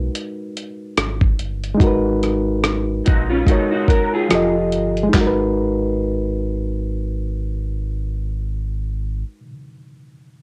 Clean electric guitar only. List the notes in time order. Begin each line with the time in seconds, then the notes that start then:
3.06 D#4 F#4
3.30 C#4 F4
3.47 B3 D#4
3.71 D#4 F#4
3.88 F#4 A#4
4.13 F4 G#4